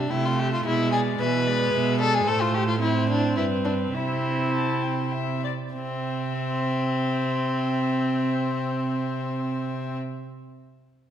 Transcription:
Already playing: D4
0.09 C3 A3 E4 G5
0.25 F4
0.39 G4 E5
0.53 F4
0.65 B2 G#3 E4 E5
0.92 G#4 D5
1.19 B2 E3 B4 E5
1.46 G#3 D5
1.73 B2 E5
1.99 A4 D5
2.15 G#4
2.26 A2 A3 A4 C5
2.42 F4
2.55 G4
2.68 F4
2.80 C4 E4 C5
3.10 D4
3.37 G2 E4 B4
3.65 D4
3.94 C3 C4 E4 E5
4.53 A5
4.82 G5
5.12 E5
5.44 D5
5.74 C3 C4 E5

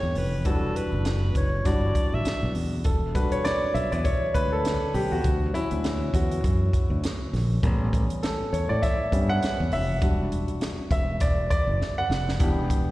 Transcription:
Already playing: E3 A3 C#4 G4 C#5
0.03 E2
0.15 F1 B4, open hi-hat
0.45 E1 E3 G3 D4 F#4 A4, kick, closed hi-hat
0.76 B4, closed hi-hat
0.93 F#1
1.05 snare, closed hi-hat
1.35 F#1 C#5, kick, closed hi-hat
1.64 G1 E3 G3 D4 F#4 D5, kick, snare, closed hi-hat
1.95 kick, closed hi-hat
2.12 A1 E5
2.25 muted fingered electric bass stroke, snare, closed hi-hat
2.43 B1
2.55 E2, open hi-hat
2.84 E1 A4, kick, closed hi-hat
3.14 G3 D4 F#4 B4, kick, closed hi-hat
3.32 C#5, muted fingered electric bass stroke, closed hi-hat
3.45 D5, snare, closed hi-hat
3.74 B1 E5, closed hi-hat
3.92 E2 D5, closed hi-hat
4.04 C#5, kick, closed hi-hat
4.34 D2 B4, kick, closed hi-hat
4.52 A4
4.65 snare, closed hi-hat
4.94 B1 G4, open hi-hat
5.12 E2 F#4
5.24 D2, kick, closed hi-hat
5.53 F#3 C#4 E4, closed hi-hat
5.71 D2, closed hi-hat
5.84 snare, closed hi-hat
6.14 E2 F#4, kick, closed hi-hat
6.31 closed hi-hat
6.44 F#2, kick, closed hi-hat
6.73 kick, closed hi-hat
6.90 D2
7.04 snare, closed hi-hat
7.33 A#1, snare, open hi-hat
7.63 A1 G3 B3 C#4, kick, closed hi-hat
7.93 kick, closed hi-hat
8.10 closed hi-hat
8.23 A4, snare, closed hi-hat
8.53 E2 C#5, closed hi-hat
8.69 A2 D5
8.82 E5, kick, snare, closed hi-hat
9.11 G2 G3 B3 C#4, kick, closed hi-hat
9.29 F#5
9.43 snare, closed hi-hat
9.60 E2
9.72 F1 E5, open hi-hat
10.02 E1 G3 D4 F#4, kick, closed hi-hat
10.32 closed hi-hat
10.48 muted fingered electric bass stroke, closed hi-hat
10.61 snare, closed hi-hat
10.90 E1 E5, kick, closed hi-hat
11.20 E1 D5, kick, snare, closed hi-hat
11.50 D5, kick, closed hi-hat
11.67 F#1
11.81 snare
11.98 F#5
12.10 F1, snare
12.29 snare
12.39 E1 E3 B3 D4 G4, kick, closed hi-hat
12.70 kick, closed hi-hat
12.87 muted fingered electric bass stroke

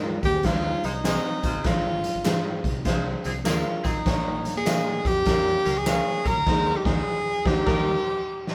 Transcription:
Already playing: G#2 G#3 D#4 A#4
0.03 G#3 F4
0.22 D#2 A#3 G4, kick, closed hi-hat, tambourine, high conga, low conga
0.33 C4 G#4
0.43 G#3 D#4 F4 C5, kick, snare, closed hi-hat, tambourine, high conga
0.64 G3 D#4
0.83 C2 G#3 D#4 C5, closed hi-hat, tambourine, high conga
1.04 G#3 C4 D#4 G#4 C5 D#5 G#5, snare, clap, closed hi-hat, tambourine, high conga
1.43 A#1 G#3 F4 C5, kick, closed hi-hat, tambourine, high conga, low conga
1.54 G1
1.64 G#1 G#3 F4 C5, kick, snare, closed hi-hat
2.03 closed hi-hat, tambourine, high conga
2.15 G#1
2.24 G#2 G#3 F4 G#4 C5 F5, snare, clap, closed hi-hat, tambourine, muted conga
2.63 C2, kick, closed hi-hat, high conga, low conga
2.85 G#3 F4 C5, kick, snare, closed hi-hat, tambourine, high conga
3.24 C2 F3 C4 G#4, closed hi-hat, tambourine, high conga
3.44 D#2 F3 G#3 C4 F4 G#4 A#4 C5 F5, snare, clap, closed hi-hat, tambourine, muted conga, high conga
3.48 F4
3.83 G#1 F3 C4 D#4 G#4, kick, closed hi-hat, tambourine, high conga, low conga
3.96 A1
4.06 A#1 A#3 F4 C#5, kick, snare, closed hi-hat, tambourine
4.45 closed hi-hat, tambourine, muted conga, high conga
4.56 A#2 G#4
4.65 A#2 A#3 F4 A#4 C#5 D#5 F5, snare, clap, closed hi-hat, tambourine
5.05 F2 G4, kick, closed hi-hat, tambourine, muted conga, high conga, low conga
5.25 F3 A#3 C#4 F4 A#4, kick, snare, closed hi-hat, tambourine, high conga
5.64 C#2 F3 C#4 A#4, closed hi-hat, tambourine, high conga
5.77 G#4
5.86 F3 A#3 C#4 F4 A#4 C#5 F5, snare, clap, closed hi-hat, tambourine, muted conga, high conga
6.24 A#1 F3 C#4 A#4, kick, closed hi-hat, tambourine, muted conga, high conga, low conga
6.37 D2
6.46 D#2 G#3 D#4 G#4 C5 D#5, kick, snare, crash
6.76 G4
6.85 D#2 G#3 D#4 G#4 C5 D#5, kick, snare
7.45 D#2 G#3 D#4 G4 G#4 C5 D#5, kick, snare
7.66 D#2 G3 D#4 G4 A#4 D#5, kick, snare, crash
8.47 snare

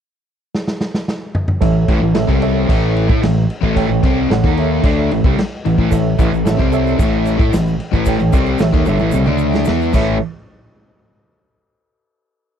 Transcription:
0.55 snare
0.68 snare
0.81 snare
0.94 snare
1.08 snare
1.35 mid tom
1.48 mid tom
1.61 A1 A2 E3 A4 C#5 E5, kick, crash
1.88 A1 A2 E3, kick, crash
2.02 A1 A2 E3
2.14 A1 A2 E3 A4 C#5 E5, snare, crash
2.27 C2 C3 G3 C4, kick
2.41 A4 C#5 E5, crash
2.68 A1 A2 E3 A3, kick, crash
2.96 crash
3.08 A2 A3 E4, kick
3.22 A1 A2 E3, snare, crash
3.50 crash
3.61 A1 A2 E3 A3, kick
3.75 A4 C#5 G5, kick, crash
3.88 A1 A2 E3
4.03 C2 C3 G3 C4, kick, crash
4.30 A1 A2 E3 A4 C#5 F#5, snare, crash
4.44 D#2 D#3 A#3 D#4, kick
4.57 A4 C#5 E5, crash
4.83 D2 D3 A3 D4, kick, crash
5.11 A1 A2 E3, crash
5.24 C2 C3 G3, kick
5.39 muted overdriven electric guitar stroke, muted fingered electric bass stroke, muted distorted electric guitar stroke, snare, crash
5.65 A1 A2 E3, crash
5.78 A1 A2 E3, kick
5.91 A1 A2 E3 A4 C#5 E5, kick, crash, shaker
6.19 A1 A2 E3, kick, crash, shaker
6.32 A1 A2 E3, shaker
6.45 A1 A2 E3 A4 C#5 E5, snare, crash, shaker
6.57 C2 C3 G3 C4, kick
6.72 A4 C#5 E5, crash, shaker
6.86 shaker
6.98 A1 A2 E3 A3, kick, crash, shaker
7.25 crash, shaker
7.38 A2 A3 E4, kick, shaker
7.51 A1 A2 E3, snare, crash, shaker
7.67 shaker
7.80 crash
7.92 A1 A2 E3 A3, kick, shaker
8.05 A4 C#5 G5, kick, crash, shaker
8.19 A1 A2 E3, shaker
8.32 C2 C3 G3 C4, kick, crash, shaker
8.46 shaker
8.58 A1 A2 E3 A4 C#5 E5, snare, crash, shaker
8.72 D#2 D#3 A#3, kick, shaker
8.85 G1 G2 D3 A4 C#5 E5, crash, shaker
8.99 A1 A2 E3, shaker
9.11 C2 C3 G3, high tom, shaker
9.25 D2 D3 A3 D4, high tom, shaker
9.38 shaker
9.53 snare, shaker
9.65 E3 B3 E4, snare, shaker
9.69 E2
9.81 shaker
9.93 A1 A2 E3 A3 C#4 E4 A4 C#5 E5, kick, crash, shaker

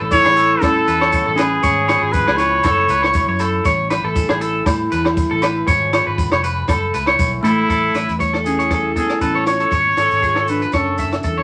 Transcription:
Already playing: A2 C#4 E4
0.00 A1 A4
0.11 E3 E4 C#5, kick, maracas
0.25 A1 G#4, cross-stick, low agogo
0.36 E4 A4, closed hi-hat, maracas
0.61 A2 C#4 E4 A4, kick, cross-stick, low agogo, maracas
0.87 E2 A2 E4 B4, closed hi-hat, maracas
1.01 C#5, cross-stick, low agogo
1.12 B2, kick, maracas
1.27 A1 A4
1.36 A2 C#4 G#4 B4, cross-stick, closed hi-hat, low agogo, maracas
1.63 G#1 G#2 C#4 C#5, kick, maracas
1.88 F4 C#5, cross-stick, closed hi-hat, low agogo, maracas
2.02 G#1 G#4
2.11 F3 F4 B4, kick, maracas
2.27 C#2 G#4, cross-stick, low agogo
2.36 E4 G#4 B4 C#5, closed hi-hat, maracas
2.63 F#1 A3 A4, muted steel-string acoustic guitar stroke, kick, cross-stick, low agogo, maracas
2.88 C#2 E4 B4, closed hi-hat, maracas
3.02 C#5, cross-stick, low agogo
3.13 F#3, kick, maracas
3.28 F#2 C#5
3.39 A4, closed hi-hat, low agogo, maracas
3.65 A1 A2 C#4 C#5, kick, maracas
3.90 E4 B4, cross-stick, closed hi-hat, low agogo, maracas
4.04 A1 A4
4.15 E3, kick, maracas
4.29 A1 G#4, cross-stick, low agogo
4.41 A4, closed hi-hat, maracas
4.66 A2 E4, muted clean electric guitar stroke, kick, cross-stick, low agogo, maracas
4.92 E2 A2 A4 B4, closed hi-hat, maracas
5.05 cross-stick, low agogo
5.17 E4, kick, maracas
5.31 A1 A4
5.42 A4 B4, cross-stick, closed hi-hat, low agogo, maracas
5.67 G#1 G#2 F3 C#4 F4 G#4 C#5, kick, maracas
5.93 F4 C#5, cross-stick, closed hi-hat, low agogo, maracas
6.06 G#1 B4
6.18 A2, kick, maracas
6.31 F1 C#5, cross-stick, low agogo
6.43 G#2 B4, closed hi-hat, maracas
6.68 F#1 A3 A4, muted steel-string acoustic guitar stroke, kick, cross-stick, low agogo, maracas
6.94 C#2 E4 B4, closed hi-hat, maracas
7.06 C#5, cross-stick, low agogo
7.19 B1 F#2, kick, maracas
7.43 A1 G#2 A3 E4 A4, closed hi-hat, low agogo, maracas
7.70 A1 A2 A4, kick, closed hi-hat, maracas
7.95 A1 C#4 B4, cross-stick, closed hi-hat, maracas
8.09 E2, closed hi-hat, maracas
8.20 E4 C#5, kick, closed hi-hat, maracas
8.33 A4, cross-stick
8.44 E3 C#4 G#4, closed hi-hat, maracas
8.59 C#5, closed hi-hat
8.70 E4 A4, kick, cross-stick, closed hi-hat, maracas
8.95 A2 B3 G#4 A4, kick, closed hi-hat, maracas
9.10 cross-stick, closed hi-hat, maracas
9.20 A1 C#4 A4 B4, kick, closed hi-hat, maracas
9.35 C#5
9.47 E4 F4 C#5, cross-stick, closed hi-hat, maracas
9.60 A4, closed hi-hat
9.71 G#1 C#5, muted steel-string acoustic guitar stroke, kick, closed hi-hat, maracas
9.97 G#1 G#4 A4, cross-stick, closed hi-hat, maracas
10.11 G#1, closed hi-hat, maracas
10.22 F4 G#4, kick, closed hi-hat, maracas
10.36 A4, cross-stick
10.47 F3 D4 B4, closed hi-hat, maracas
10.61 B4, closed hi-hat, maracas
10.72 F#1 F#2 C#4 A4 C#5, kick, cross-stick, closed hi-hat, maracas
10.98 E4 E5, kick, closed hi-hat, maracas
11.11 cross-stick, closed hi-hat, maracas
11.23 E2 E4 A4, kick, closed hi-hat, maracas
11.38 C#5

